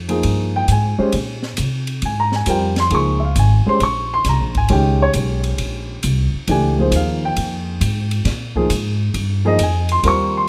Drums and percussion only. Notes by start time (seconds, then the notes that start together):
0.09 ride
0.23 ride
0.68 hi-hat pedal, ride
1.12 ride
1.43 snare
1.57 hi-hat pedal, ride
1.87 ride
2.02 ride
2.32 snare
2.46 hi-hat pedal, ride
2.76 snare, ride
2.90 ride
3.36 hi-hat pedal, ride
3.80 ride
4.25 snare, hi-hat pedal, ride
4.55 kick, ride
4.68 ride
5.13 hi-hat pedal, ride
5.44 ride
5.58 ride
6.03 hi-hat pedal, ride
6.48 ride
6.92 hi-hat pedal, ride
7.36 ride
7.81 hi-hat pedal, ride
8.11 ride
8.25 snare, ride
8.56 kick
8.70 hi-hat pedal, ride
9.14 ride
9.59 hi-hat pedal, ride
9.89 ride
10.03 ride